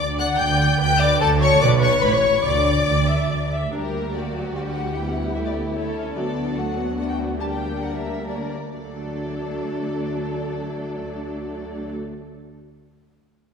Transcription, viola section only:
Already playing: D5
0.80 B4
1.20 A4
1.61 B4
2.02 C#5
2.44 D5
2.87 D5
3.09 E5
3.30 D5
3.52 E5
3.72 G3 D4
3.94 A#3
4.14 A#3
4.34 F#3
4.55 G3
4.95 G3 B3
5.35 A3
5.75 A3
5.95 C#4
6.16 F#3 B3
6.37 F#3
6.56 A3
6.76 B3
6.97 A3
7.40 G3 A#3
8.28 G3 A#3
8.75 F#3 A3

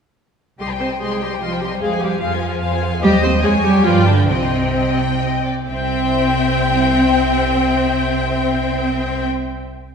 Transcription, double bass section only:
0.60 C2
1.01 C2
1.41 C2
1.81 F2
2.21 F2
2.62 F2
3.02 D#2
3.43 F2
3.85 G2
4.28 C2
5.69 C2

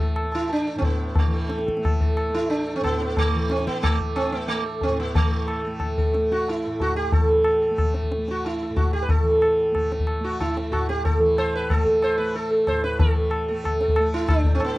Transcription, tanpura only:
Already playing: A2 E3 A3
0.24 A3
0.75 A2
1.25 E3
1.78 A3
2.29 A3
2.80 A2
3.33 E3
3.83 A3
4.35 A3
4.87 A2
5.16 E3
5.67 A3
6.17 A3
6.66 A2
7.18 E3
7.71 A3
8.18 A3
8.70 A2
9.20 E3
9.72 A3
10.20 A3
10.70 A2
11.19 E3
11.71 A3
12.19 A3
12.69 A2
13.01 E3
13.51 A3
14.00 A3
14.48 A2

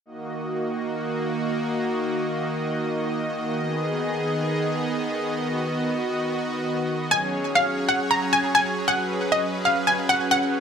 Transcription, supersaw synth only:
0.06 D#3 A#3 F#4 D#5
3.58 B3 G#4
5.35 F#4
7.11 F#3 C#4 G#4 C#5
8.88 B4

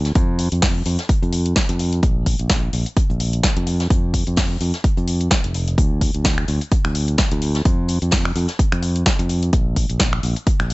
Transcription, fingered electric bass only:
Already playing: D2
0.16 F2
0.52 F2
0.86 F2
1.22 F2
1.69 F2
2.03 A#1
2.39 A#1
2.73 A#1
3.10 A#1
3.57 F2
3.90 F2
4.27 F2
4.61 F2
4.97 F2
5.44 F1
5.78 D2
6.15 D2
6.48 D2
6.85 D2
7.32 D2
7.65 F2
8.02 F2
8.36 F2
8.72 F2
9.19 F2
9.53 A#1
9.90 A#1
10.23 A#1
10.60 A#1

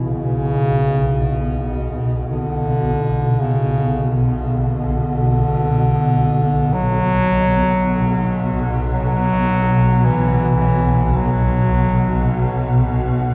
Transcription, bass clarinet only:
0.04 C#3
2.30 D3
3.40 C#3
4.50 D3
6.73 F#3
8.93 F#3
10.05 E3
11.17 F#3

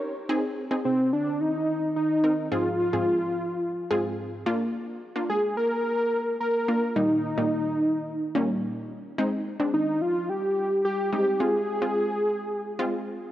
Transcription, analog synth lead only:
Already playing: C#5
0.85 C4
1.13 D4
1.41 D#4
1.96 D#4
2.52 F4
5.29 G#4
5.57 A#4
6.40 A#4
6.96 D#4
9.74 D#4
10.01 F4
10.29 G4
10.85 G4
11.13 G4
11.40 G#4

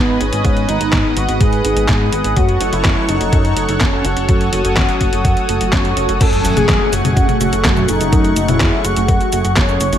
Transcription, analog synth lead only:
Already playing: B3
0.21 C#4
0.69 D#4
1.17 F#4
1.41 G#4
2.13 G#4
2.37 F#4
2.73 E4
3.09 D#4
3.81 C#4
4.05 F#4
5.73 C#5
6.21 A4
6.57 G#4
6.93 F#4
7.41 F#4
7.89 D#4
8.49 E4
8.85 F#4
9.57 C#5

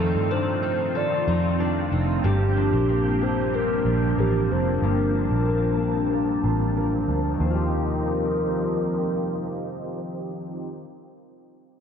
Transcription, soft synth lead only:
Already playing: A4
0.32 C5
0.97 D5
2.26 G4
3.23 C5
3.55 A#4
4.19 G4
4.51 C5
4.84 A#4
7.42 A#4

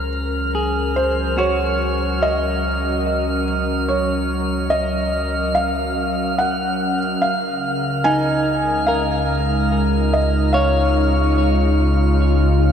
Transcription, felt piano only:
0.96 C5
1.38 C#5
2.22 D#5
3.89 C#5
4.70 D#5
5.55 F5
6.38 F#5
7.22 F5
8.04 G#5
8.87 F5
10.13 D#5
10.53 F5

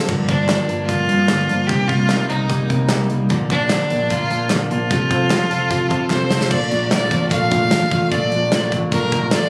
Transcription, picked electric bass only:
0.09 G1
0.29 G1
0.69 G1
0.89 G1
1.09 G2
1.29 G1
1.50 G1
1.69 C2
1.89 C2
2.30 C2
2.49 C2
2.70 C3
2.89 C2
3.10 C2
3.30 A#1
3.50 A#1
3.91 A#1
4.11 A#1
4.31 A#2
4.51 A#1
4.72 A#1
4.91 F1
5.11 F1
5.51 F1
5.71 F1
5.91 F2
6.11 F1
6.30 F1
6.51 A#1
6.71 A#1
6.91 A#1
7.11 A1
7.31 A#1
7.52 A#1
7.71 A1
7.92 A1
8.12 A#1
8.32 A#1
8.52 A#1
8.72 A1
8.92 A#1
9.12 A#1
9.32 A1

